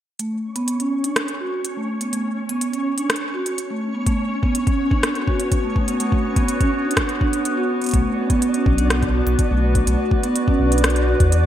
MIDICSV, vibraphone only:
0, 0, Header, 1, 2, 480
1, 0, Start_track
1, 0, Key_signature, 2, "minor"
1, 0, Tempo, 483871
1, 192, Time_signature, 4, 2, 24, 8
1, 11368, End_track
2, 0, Start_track
2, 0, Title_t, "Vibraphone"
2, 0, Program_c, 0, 11
2, 192, Note_on_c, 0, 57, 68
2, 281, Note_off_c, 0, 57, 0
2, 552, Note_on_c, 0, 59, 88
2, 666, Note_off_c, 0, 59, 0
2, 792, Note_on_c, 0, 61, 67
2, 845, Note_off_c, 0, 61, 0
2, 1032, Note_on_c, 0, 62, 68
2, 1121, Note_off_c, 0, 62, 0
2, 1392, Note_on_c, 0, 66, 67
2, 1506, Note_off_c, 0, 66, 0
2, 1752, Note_on_c, 0, 57, 66
2, 1805, Note_off_c, 0, 57, 0
2, 1992, Note_on_c, 0, 59, 70
2, 2081, Note_off_c, 0, 59, 0
2, 2112, Note_on_c, 0, 57, 72
2, 2201, Note_off_c, 0, 57, 0
2, 2472, Note_on_c, 0, 59, 87
2, 2586, Note_off_c, 0, 59, 0
2, 2713, Note_on_c, 0, 61, 68
2, 2765, Note_off_c, 0, 61, 0
2, 2952, Note_on_c, 0, 62, 70
2, 3041, Note_off_c, 0, 62, 0
2, 3313, Note_on_c, 0, 66, 72
2, 3427, Note_off_c, 0, 66, 0
2, 3672, Note_on_c, 0, 57, 68
2, 3725, Note_off_c, 0, 57, 0
2, 3913, Note_on_c, 0, 59, 70
2, 4001, Note_off_c, 0, 59, 0
2, 4033, Note_on_c, 0, 57, 74
2, 4121, Note_off_c, 0, 57, 0
2, 4392, Note_on_c, 0, 59, 96
2, 4506, Note_off_c, 0, 59, 0
2, 4633, Note_on_c, 0, 61, 71
2, 4686, Note_off_c, 0, 61, 0
2, 4872, Note_on_c, 0, 62, 73
2, 4961, Note_off_c, 0, 62, 0
2, 5232, Note_on_c, 0, 66, 72
2, 5346, Note_off_c, 0, 66, 0
2, 5592, Note_on_c, 0, 57, 70
2, 5645, Note_off_c, 0, 57, 0
2, 5832, Note_on_c, 0, 59, 74
2, 5921, Note_off_c, 0, 59, 0
2, 5952, Note_on_c, 0, 57, 74
2, 6041, Note_off_c, 0, 57, 0
2, 6312, Note_on_c, 0, 59, 93
2, 6426, Note_off_c, 0, 59, 0
2, 6552, Note_on_c, 0, 61, 75
2, 6605, Note_off_c, 0, 61, 0
2, 6792, Note_on_c, 0, 62, 71
2, 6881, Note_off_c, 0, 62, 0
2, 7152, Note_on_c, 0, 62, 75
2, 7266, Note_off_c, 0, 62, 0
2, 7513, Note_on_c, 0, 66, 73
2, 7601, Note_off_c, 0, 66, 0
2, 7752, Note_on_c, 0, 59, 72
2, 7866, Note_off_c, 0, 59, 0
2, 7872, Note_on_c, 0, 57, 73
2, 7961, Note_off_c, 0, 57, 0
2, 8232, Note_on_c, 0, 59, 94
2, 8346, Note_off_c, 0, 59, 0
2, 8472, Note_on_c, 0, 61, 70
2, 8525, Note_off_c, 0, 61, 0
2, 8712, Note_on_c, 0, 62, 70
2, 8801, Note_off_c, 0, 62, 0
2, 9072, Note_on_c, 0, 66, 70
2, 9186, Note_off_c, 0, 66, 0
2, 9432, Note_on_c, 0, 57, 68
2, 9485, Note_off_c, 0, 57, 0
2, 9672, Note_on_c, 0, 59, 70
2, 9761, Note_off_c, 0, 59, 0
2, 9792, Note_on_c, 0, 57, 75
2, 9881, Note_off_c, 0, 57, 0
2, 10152, Note_on_c, 0, 59, 94
2, 10266, Note_off_c, 0, 59, 0
2, 10393, Note_on_c, 0, 61, 76
2, 10446, Note_off_c, 0, 61, 0
2, 10632, Note_on_c, 0, 62, 73
2, 10721, Note_off_c, 0, 62, 0
2, 10992, Note_on_c, 0, 66, 76
2, 11106, Note_off_c, 0, 66, 0
2, 11368, End_track
0, 0, End_of_file